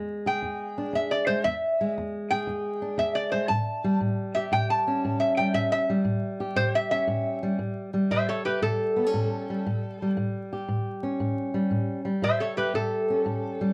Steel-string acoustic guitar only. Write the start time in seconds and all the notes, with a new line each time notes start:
Already playing: E2 G#3
0.26 G#4
0.42 E2
0.78 D4
0.93 E2
1.28 G#3
1.45 E2
1.81 G#3
1.98 E2
2.32 G#4
2.47 E2
2.82 D4
2.98 E2
3.33 G#3
3.50 A2
3.84 G3
4.01 A2
4.36 G4
4.52 A2
4.87 C#4
5.05 A2
5.39 G3
5.54 A2
5.90 G3
6.05 A2
6.40 G4
6.56 A2
6.92 C#4
7.07 A2
7.43 G3
7.59 A2
7.94 G3
8.11 A2
8.47 G4
8.62 A2
8.96 B3
9.06 C#4
9.14 A2
9.50 G3
9.66 A2
10.02 G3
10.17 A2
10.53 G4
10.68 A2
11.03 C#4
11.20 A2
11.54 G3
11.71 A2
12.05 G3
12.22 A2
12.58 G4
12.74 A2
13.10 C#4
13.26 A2
13.61 G3